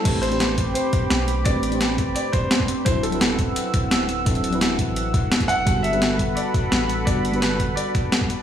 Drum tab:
CC |x---------------|----------------|----------------|----------------|
HH |x-xxx-x-x-x-x-x-|x-xxx-x-x-x-x-x-|x-xxx-x-x-x-x-x-|xxxxx-x-x-x-xxx-|
SD |----o-------o---|----o-------o---|----o-------o---|----o-------o---|
BD |o-----o---o-----|o-----o---o--o--|o-----o---o-----|o-----o---o--o--|

CC |----------------|----------------|
HH |x-xxx-x-x-x-x-x-|x-xxx-x-x-x-x-x-|
SD |----o-------o---|----o-------o---|
BD |o-----o---o-----|o-----o---o--o--|